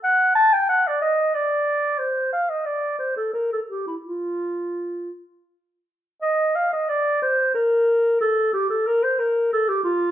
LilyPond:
\new Staff \with { instrumentName = "Clarinet" } { \time 6/8 \key bes \major \tempo 4. = 60 ges''8 a''16 g''16 ges''16 d''16 ees''8 d''4 | c''8 f''16 ees''16 d''8 c''16 a'16 bes'16 a'16 g'16 e'16 | f'4. r4. | ees''8 f''16 ees''16 d''8 c''8 bes'4 |
a'8 g'16 a'16 bes'16 c''16 bes'8 a'16 g'16 f'8 | }